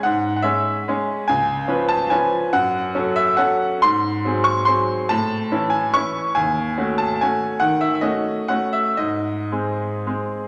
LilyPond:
\new Staff \with { instrumentName = "Grand piano" } { \time 3/4 \key cis \minor \tempo 4 = 142 << { \tuplet 3/2 { fis''4~ fis''16 fis''16 } e''4 r4 | gis''4. a''8 gis''4 | fis''4. e''8 fis''4 | bis''4. cis'''8 bis''4 |
a''4. gis''8 cis'''4 | gis''4. a''8 gis''4 | \tuplet 3/2 { fis''8. e''8 e''16 } dis''4 fis''8 e''8 | dis''2. | } \\ { gis,4 <gis cis' gis'>4 <gis cis' gis'>4 | cis,4 <eis cis' b'>4 <eis cis' b'>4 | fis,4 <fis cis' a'>4 <fis cis' a'>4 | gis,4 <fis bis gis'>4 <fis bis gis'>4 |
a,4 <e cis' e'>4 <e cis' e'>4 | dis,4 <a cis' fis'>4 <a cis' fis'>4 | dis4 <a cis' fis'>4 <a cis' fis'>4 | gis,4 <gis bis gis'>4 <gis bis gis'>4 | } >> }